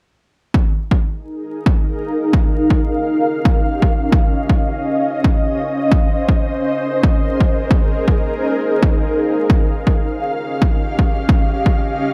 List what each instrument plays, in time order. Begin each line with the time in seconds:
0.54 ambient pad D#4, kick
0.87 ambient pad G#4
0.91 ambient pad A#4, kick
1.38 ambient pad F5
1.66 kick
2.33 ambient pad C#4, kick
2.70 kick
3.01 ambient pad G4
3.17 ambient pad D#5
3.45 kick
3.82 kick
4.12 kick
4.49 kick
4.58 ambient pad C5
5.24 kick
5.92 kick
6.29 kick
6.36 ambient pad G#4 A#4
7.03 kick
7.41 kick
7.70 ambient pad D#4, kick
8.08 kick
8.54 ambient pad F5
8.83 kick
9.50 ambient pad C#4, kick
9.70 ambient pad D#5
9.87 kick
10.11 ambient pad G4
10.62 kick
10.99 kick
11.29 kick
11.66 kick
11.89 ambient pad C5